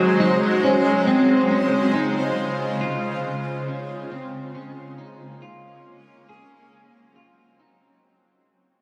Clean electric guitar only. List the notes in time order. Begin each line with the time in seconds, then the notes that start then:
Already playing: F#4
0.20 D#4
0.63 C#4
1.07 C4
1.51 C#4
1.94 D#4
2.81 F4
3.68 C#4
4.12 C4
4.55 C#4
4.98 D#4
5.42 F4
6.29 G#4
7.16 F4
7.60 D#4